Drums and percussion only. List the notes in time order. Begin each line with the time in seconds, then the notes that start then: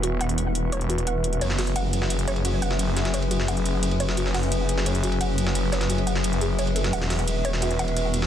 0.03 closed hi-hat
0.21 closed hi-hat
0.29 closed hi-hat
0.38 closed hi-hat
0.55 closed hi-hat
0.72 closed hi-hat
0.81 closed hi-hat
0.90 closed hi-hat
0.98 closed hi-hat
1.07 closed hi-hat
1.24 closed hi-hat
1.33 closed hi-hat
1.41 closed hi-hat, ride
1.50 snare
1.59 snare, closed hi-hat, open hi-hat
1.67 closed hi-hat
1.76 closed hi-hat, ride
1.93 closed hi-hat, ride
2.02 snare
2.10 closed hi-hat, ride
2.19 closed hi-hat
2.28 closed hi-hat, ride
2.36 ride
2.45 closed hi-hat, ride
2.62 closed hi-hat, ride
2.71 snare
2.79 closed hi-hat, ride
2.97 snare, closed hi-hat, ride
3.05 snare, closed hi-hat
3.14 closed hi-hat, ride
3.22 ride
3.31 closed hi-hat, ride
3.40 snare
3.48 closed hi-hat, ride
3.57 closed hi-hat
3.66 closed hi-hat, ride
3.83 closed hi-hat, ride
3.91 ride
4.00 closed hi-hat, ride
4.09 snare
4.17 closed hi-hat, ride
4.26 snare
4.34 snare, closed hi-hat, open hi-hat
4.43 closed hi-hat
4.52 closed hi-hat, ride
4.69 closed hi-hat, ride
4.78 snare
4.86 closed hi-hat, ride
4.95 closed hi-hat
5.03 closed hi-hat, ride
5.12 ride
5.21 closed hi-hat, ride
5.38 closed hi-hat, ride
5.47 snare
5.55 closed hi-hat, ride
5.72 snare, closed hi-hat, ride
5.81 snare, closed hi-hat
5.90 closed hi-hat, ride
5.98 ride
6.07 closed hi-hat, ride
6.16 snare
6.24 closed hi-hat, ride
6.33 closed hi-hat
6.41 closed hi-hat, ride
6.59 closed hi-hat, ride
6.67 ride
6.76 closed hi-hat, ride
6.84 snare, closed hi-hat
6.93 closed hi-hat, ride
7.02 snare
7.10 snare, closed hi-hat, open hi-hat
7.19 closed hi-hat
7.28 closed hi-hat, ride
7.45 closed hi-hat, ride
7.53 snare
7.62 closed hi-hat, ride
7.71 closed hi-hat
7.79 closed hi-hat, ride
7.88 ride
7.96 closed hi-hat, ride
8.14 closed hi-hat, ride
8.22 snare